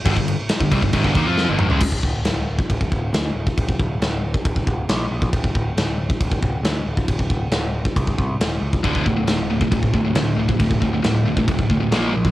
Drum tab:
CC |x-x-x-x-x-x-----|x---x---x---x---|x---x---x---x---|x---x---x---x---|
SD |----o-------o---|----o-------o---|----o-------o---|----o-------o---|
T2 |--------------o-|----------------|----------------|----------------|
FT |---------------o|----------------|----------------|----------------|
BD |oo---oooooo-----|ooo----oooo----o|ooo----oooo----o|ooo----oooo----o|

CC |x---x---x---x---|x---x---x---x---|x---x---x---x---|
SD |----o-------o---|----o-------o---|----o-------o---|
T2 |----------------|----------------|----------------|
FT |----------------|----------------|----------------|
BD |ooo----oooo----o|ooo----oooo----o|ooo----oooo----o|